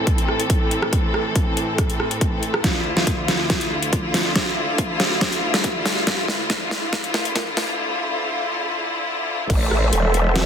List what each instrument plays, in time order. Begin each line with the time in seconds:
Already playing: string section A2 E3 C4 A4
0.07 kick, closed hi-hat
0.18 closed hi-hat
0.28 cross-stick
0.40 closed hi-hat
0.50 kick, closed hi-hat
0.71 closed hi-hat
0.82 cross-stick
0.93 kick, closed hi-hat
1.14 cross-stick
1.36 kick, closed hi-hat
1.57 closed hi-hat
1.78 kick, cross-stick, closed hi-hat
1.90 closed hi-hat
2.00 cross-stick
2.11 closed hi-hat
2.21 kick, closed hi-hat
2.43 closed hi-hat
2.54 cross-stick
2.64 string section D2 D3 E4 F4, kick, snare, closed hi-hat
2.97 snare
3.07 kick, closed hi-hat
3.28 snare, closed hi-hat
3.50 kick, snare, closed hi-hat
3.61 closed hi-hat
3.82 closed hi-hat
3.93 kick, closed hi-hat
4.14 snare, open hi-hat
4.36 kick, snare, closed hi-hat
4.78 kick, closed hi-hat
5.00 snare, closed hi-hat
5.21 kick, snare, closed hi-hat
5.33 closed hi-hat
5.54 snare, closed hi-hat
5.64 kick, closed hi-hat
5.86 snare, open hi-hat
6.07 kick, snare, closed hi-hat
6.28 snare
6.50 kick, snare, closed hi-hat
6.71 snare, closed hi-hat
6.93 kick, snare, closed hi-hat
7.04 closed hi-hat
7.14 snare
7.25 closed hi-hat
7.36 kick, snare, closed hi-hat
7.57 snare, open hi-hat
9.50 wobble bass A1, string section A3 A4 C5 E5, kick, closed hi-hat, crash
9.71 wobble bass A1, cross-stick
9.93 wobble bass E1, closed hi-hat
10.14 closed hi-hat
10.36 snare, closed hi-hat